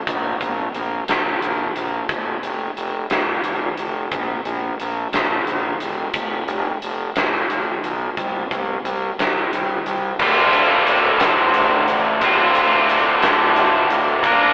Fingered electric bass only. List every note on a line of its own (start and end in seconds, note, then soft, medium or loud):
0.07 0.32 A#1 medium
0.41 0.66 A#1 medium
0.74 0.99 A#1 medium
1.09 1.33 A#1 medium
1.42 1.67 A#1 medium
1.76 2.00 A#1 medium
2.09 2.34 F1 medium
2.43 2.68 F1 medium
2.76 3.01 F1 medium
3.11 3.36 D1 medium
3.44 3.69 F1 medium
3.78 4.03 F1 medium
4.11 4.36 A#1 medium
4.45 4.70 A#1 medium
4.80 5.04 A#1 medium
5.12 5.37 A#1 medium
5.47 5.71 A#1 medium
5.81 6.05 E1 medium
6.14 6.39 F1 medium
6.47 6.72 F1 medium
6.82 7.07 F1 medium
7.16 7.41 D1 medium
7.49 7.74 F1 medium
7.84 8.08 B1 medium
8.17 8.42 C2 medium
8.51 8.75 C2 medium
8.84 9.09 C2 medium
9.18 9.43 C2 medium
9.53 9.77 C2 medium
9.85 10.10 C2 medium
10.19 10.51 D1 medium
10.53 10.84 D1 medium
10.87 11.19 D1 medium
11.21 11.52 D1 medium
11.54 11.86 D1 medium
11.88 12.20 A1 medium
12.22 12.53 D1 medium
12.54 12.87 D1 medium
12.90 13.54 D1 medium
13.57 13.89 D1 medium
13.91 14.22 D1 medium
14.24 14.53 A#1 medium